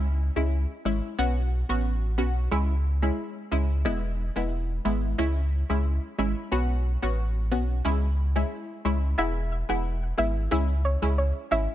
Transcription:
0.00 0.30 C#2 loud
0.36 0.65 C#2 loud
0.36 0.81 G#3 medium
0.36 0.81 C#4 medium
0.36 0.82 E4 medium
0.85 1.01 G#1 medium
0.85 1.16 G#3 medium
0.85 1.16 C#4 medium
0.85 1.16 E4 medium
1.18 1.63 B1 loud
1.18 1.65 B3 medium
1.18 1.65 C#4 medium
1.18 1.65 F#4 loud
1.69 2.20 A1 loud
1.69 2.14 B3 medium
1.69 2.15 C#4 medium
1.69 2.15 F#4 medium
2.18 2.48 B1 medium
2.18 2.49 B3 medium
2.18 2.49 C#4 medium
2.18 2.49 F#4 medium
2.51 3.11 C#2 loud
2.51 2.74 G#3 medium
2.51 2.74 C#4 medium
2.51 2.74 E4 loud
3.02 3.48 G#3 medium
3.02 3.48 C#4 medium
3.02 3.48 E4 medium
3.51 3.87 C#2 medium
3.51 3.82 G#3 medium
3.51 3.83 C#4 medium
3.51 3.83 E4 medium
3.85 4.30 E1 loud
3.85 4.32 G#3 loud
3.85 4.32 B3 medium
3.85 4.32 E4 loud
4.36 4.79 E1 medium
4.36 4.81 G#3 medium
4.36 4.81 B3 medium
4.36 4.81 E4 medium
4.85 5.15 G#1 medium
4.85 5.16 G#3 medium
4.85 5.16 B3 medium
4.85 5.16 E4 medium
5.18 5.63 C#2 loud
5.18 5.41 G#3 medium
5.18 5.41 C#4 medium
5.18 5.41 E4 loud
5.69 5.99 C#2 medium
5.69 6.15 G#3 medium
5.69 6.15 C#4 medium
5.69 6.15 E4 medium
6.18 6.34 G#1 medium
6.18 6.49 G#3 medium
6.18 6.49 C#4 medium
6.18 6.49 E4 medium
6.52 6.97 B1 loud
6.52 6.98 B3 medium
6.52 6.99 C#4 medium
6.52 6.99 F#4 loud
7.02 7.53 A1 medium
7.02 7.48 B3 medium
7.02 7.48 C#4 medium
7.02 7.48 F#4 medium
7.51 7.81 B1 medium
7.51 7.82 B3 medium
7.51 7.83 C#4 medium
7.51 7.83 F#4 medium
7.85 8.44 C#2 loud
7.85 8.07 G#3 loud
7.85 8.08 C#4 medium
7.85 8.08 E4 loud
8.36 8.81 G#3 medium
8.36 8.81 C#4 medium
8.36 8.81 E4 medium
8.85 9.14 C#2 medium
8.85 9.16 G#3 medium
8.85 9.16 C#4 medium
8.85 9.16 E4 medium
9.18 9.63 E1 loud
9.18 9.65 G#3 medium
9.18 9.65 B3 medium
9.18 9.65 E4 loud
9.18 9.33 E5 loud
9.69 10.13 E1 medium
9.69 10.14 G#3 medium
9.69 10.15 B3 medium
9.69 10.15 E4 medium
9.69 9.82 F#5 medium
10.18 10.48 G#1 loud
10.18 10.49 G#3 medium
10.18 10.49 B3 medium
10.18 10.49 E4 medium
10.18 10.33 E5 medium
10.51 10.97 C#2 loud
10.51 10.74 G#3 medium
10.51 10.74 C#4 medium
10.51 10.74 E4 loud
10.51 10.66 E5 medium
10.85 10.99 C#5 medium
11.02 11.32 C#2 loud
11.02 11.48 G#3 medium
11.02 11.48 C#4 medium
11.02 11.48 E4 medium
11.18 11.33 C#5 medium
11.51 11.67 G#1 medium
11.51 11.75 G#3 medium
11.51 11.75 C#4 medium
11.51 11.75 E4 medium
11.51 11.66 E5 medium

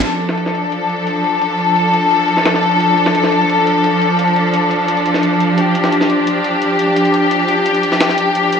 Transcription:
0.03 8.60 F3 medium
0.03 8.60 D4 medium
0.03 5.54 A4 medium
0.03 closed hi-hat medium
0.20 closed hi-hat medium
0.29 snare soft
0.38 closed hi-hat medium
0.46 snare soft
0.55 closed hi-hat medium
0.72 closed hi-hat medium
0.89 closed hi-hat medium
1.07 closed hi-hat medium
1.24 closed hi-hat medium
1.41 closed hi-hat medium
1.50 closed hi-hat soft
1.59 closed hi-hat medium
1.76 closed hi-hat medium
1.94 closed hi-hat medium
2.11 closed hi-hat medium
2.20 closed hi-hat soft
2.28 closed hi-hat medium
2.37 snare soft
2.45 snare loud
2.45 closed hi-hat medium
2.54 snare soft
2.63 closed hi-hat medium
2.80 closed hi-hat medium
2.98 closed hi-hat medium
3.06 snare medium
3.15 closed hi-hat medium
3.24 snare soft
3.32 closed hi-hat medium
3.50 closed hi-hat medium
3.67 closed hi-hat medium
3.84 closed hi-hat medium
4.02 closed hi-hat medium
4.19 closed hi-hat medium
4.28 closed hi-hat soft
4.36 closed hi-hat medium
4.54 closed hi-hat medium
4.71 closed hi-hat medium
4.88 closed hi-hat medium
4.97 closed hi-hat soft
5.06 closed hi-hat medium
5.14 snare soft
5.23 closed hi-hat medium
5.40 closed hi-hat medium
5.58 8.60 G4 medium
5.58 closed hi-hat medium
5.75 closed hi-hat medium
5.84 snare soft
5.92 closed hi-hat medium
6.01 snare soft
6.10 closed hi-hat medium
6.27 closed hi-hat medium
6.44 closed hi-hat medium
6.62 closed hi-hat medium
6.79 closed hi-hat medium
6.96 closed hi-hat medium
7.05 closed hi-hat soft
7.14 closed hi-hat medium
7.31 closed hi-hat medium
7.48 closed hi-hat medium
7.66 closed hi-hat medium
7.74 closed hi-hat soft
7.83 closed hi-hat medium
7.92 snare soft
8.01 snare loud
8.01 closed hi-hat medium
8.09 snare soft
8.18 closed hi-hat medium
8.35 closed hi-hat medium
8.35 riser medium
8.52 closed hi-hat medium

